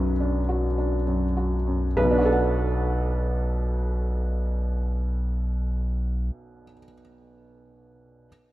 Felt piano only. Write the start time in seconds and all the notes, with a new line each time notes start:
Already playing: B1 F#2 D4 F#4 B4
0.20 D4
0.49 F#4
0.78 D4
1.07 F#2
1.37 F#4
1.67 F#2
1.97 B1 B4
2.04 B2
2.11 D4
2.18 F#4
2.25 A4
2.32 F#5